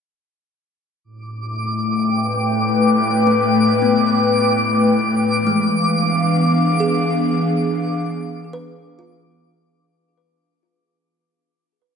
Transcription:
1.04 analog synth pad A2, synth texture D6
1.44 analog synth pad A3
1.93 analog synth pad G5
2.13 analog synth pad B4
3.27 kalimba A3
3.82 kalimba B3
5.38 analog synth pad E3
5.47 kalimba G#3
5.70 analog synth pad F5
5.79 analog synth pad B3
5.92 analog synth pad D4
6.51 analog synth pad G#4
6.80 kalimba G#4
8.53 kalimba B4
8.99 kalimba F4

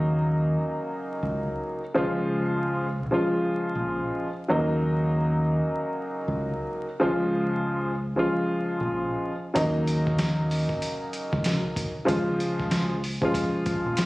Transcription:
Already playing: fingered electric bass D#2, upright piano C#3 F#3 A#3 D#4
1.23 fingered electric bass C#2
1.94 fingered electric bass C#2, upright piano C#3 F3 G#3 F4
3.11 upright piano C#3 F3 G#3 F4
3.75 fingered electric bass A#1
4.48 fingered electric bass D#2, upright piano C#3 F#3 A#3 D#4
6.28 fingered electric bass C#2
7.00 fingered electric bass C#2, upright piano C#3 F3 G#3 F4
8.16 upright piano C#3 F3 G#3 F4
8.81 fingered electric bass A#1
9.54 fingered electric bass D#2, upright piano C#3 F#3 A#3 D#4, kick, closed hi-hat
9.87 closed hi-hat
10.07 kick
10.18 snare, closed hi-hat
10.51 open hi-hat
10.69 kick
10.82 closed hi-hat
11.13 closed hi-hat
11.33 fingered electric bass C#2, kick
11.44 snare, closed hi-hat
11.76 kick, closed hi-hat
12.05 fingered electric bass C#2, upright piano C#3 F3 G#3 F4, kick, closed hi-hat
12.40 closed hi-hat
12.60 kick
12.71 snare, closed hi-hat
13.04 open hi-hat
13.21 upright piano C#3 F3 G#3 F4, kick
13.34 kick, closed hi-hat
13.66 kick, closed hi-hat
13.86 fingered electric bass A#1
13.97 snare, closed hi-hat

